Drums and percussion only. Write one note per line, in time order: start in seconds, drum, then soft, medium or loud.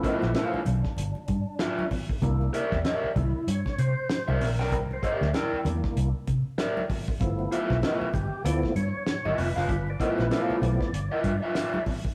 0.03 kick loud
0.03 closed hi-hat medium
0.22 snare soft
0.22 high conga medium
0.35 snare loud
0.35 closed hi-hat medium
0.54 muted conga soft
0.65 closed hi-hat medium
0.65 high conga medium
0.65 low conga medium
0.84 kick medium
0.84 snare soft
0.97 closed hi-hat medium
0.97 muted conga soft
1.15 muted conga soft
1.28 kick medium
1.28 closed hi-hat medium
1.59 snare loud
1.59 closed hi-hat medium
1.59 muted conga soft
1.79 muted conga soft
1.79 high conga medium
1.91 kick medium
1.91 open hi-hat medium
1.91 low conga medium
2.09 kick loud
2.22 kick loud
2.22 closed hi-hat medium
2.22 muted conga soft
2.22 low conga medium
2.41 muted conga soft
2.54 closed hi-hat medium
2.72 kick loud
2.72 snare soft
2.72 high conga medium
2.85 snare loud
2.85 closed hi-hat medium
3.16 kick loud
3.16 closed hi-hat medium
3.16 high conga medium
3.16 low conga medium
3.47 closed hi-hat loud
3.47 muted conga soft
3.66 kick medium
3.66 snare soft
3.66 muted conga soft
3.79 closed hi-hat medium
4.10 snare loud
4.10 closed hi-hat medium
4.29 muted conga soft
4.29 high conga medium
4.41 open hi-hat medium
4.41 low conga medium
4.60 snare soft
4.71 kick loud
4.71 closed hi-hat medium
4.71 low conga medium
4.91 muted conga soft
5.03 kick medium
5.03 closed hi-hat medium
5.22 snare soft
5.22 high conga medium
5.33 snare loud
5.33 closed hi-hat medium
5.33 muted conga soft
5.65 closed hi-hat medium
5.65 high conga medium
5.65 low conga medium
5.84 kick loud
5.84 snare soft
5.97 closed hi-hat medium
6.27 kick medium
6.27 closed hi-hat medium
6.58 snare loud
6.58 closed hi-hat medium
6.77 muted conga soft
6.77 high conga medium
6.90 kick medium
6.90 open hi-hat medium
6.90 low conga medium
7.08 kick loud
7.20 kick loud
7.20 closed hi-hat loud
7.20 muted conga soft
7.20 low conga medium
7.39 muted conga soft
7.52 closed hi-hat medium
7.70 kick medium
7.70 snare soft
7.70 high conga medium
7.82 snare loud
7.82 closed hi-hat medium
7.82 muted conga soft
8.02 muted conga soft
8.13 kick loud
8.13 closed hi-hat medium
8.13 high conga medium
8.13 low conga medium
8.46 closed hi-hat loud
8.62 kick medium
8.62 snare soft
8.62 muted conga soft
8.76 closed hi-hat medium
9.07 snare loud
9.07 closed hi-hat medium
9.25 muted conga soft
9.25 high conga medium
9.38 open hi-hat medium
9.38 low conga medium
9.57 snare soft
9.68 kick loud
9.68 closed hi-hat medium
9.68 muted conga soft
9.68 low conga medium
9.87 muted conga soft
10.00 kick medium
10.00 closed hi-hat medium
10.19 snare soft
10.19 high conga medium
10.30 snare loud
10.30 closed hi-hat medium
10.30 muted conga soft
10.50 muted conga soft
10.62 closed hi-hat medium
10.62 high conga medium
10.62 low conga medium
10.81 kick medium
10.81 snare soft
10.94 closed hi-hat medium
11.24 kick medium
11.24 closed hi-hat medium
11.55 snare loud
11.55 closed hi-hat loud
11.55 muted conga soft
11.74 muted conga soft
11.74 high conga medium
11.86 kick loud
11.86 open hi-hat medium
11.86 low conga medium
12.05 kick loud